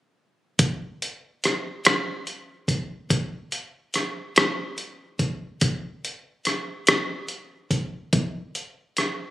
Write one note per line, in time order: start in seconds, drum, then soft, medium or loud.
0.59 kick medium
0.59 closed hi-hat medium
1.02 closed hi-hat soft
1.44 cross-stick soft
1.44 closed hi-hat soft
1.85 cross-stick medium
1.85 closed hi-hat medium
2.27 closed hi-hat soft
2.68 kick medium
2.68 closed hi-hat soft
3.10 kick medium
3.10 closed hi-hat medium
3.52 closed hi-hat soft
3.94 cross-stick soft
3.94 closed hi-hat soft
4.36 cross-stick medium
4.36 closed hi-hat medium
4.78 closed hi-hat soft
5.19 kick medium
5.19 closed hi-hat soft
5.61 kick medium
5.61 closed hi-hat medium
6.05 closed hi-hat soft
6.45 cross-stick soft
6.45 closed hi-hat soft
6.87 cross-stick medium
6.87 closed hi-hat medium
7.28 closed hi-hat soft
7.71 kick medium
7.71 closed hi-hat soft
8.13 kick medium
8.13 closed hi-hat medium
8.55 closed hi-hat soft
8.97 cross-stick soft
8.97 closed hi-hat soft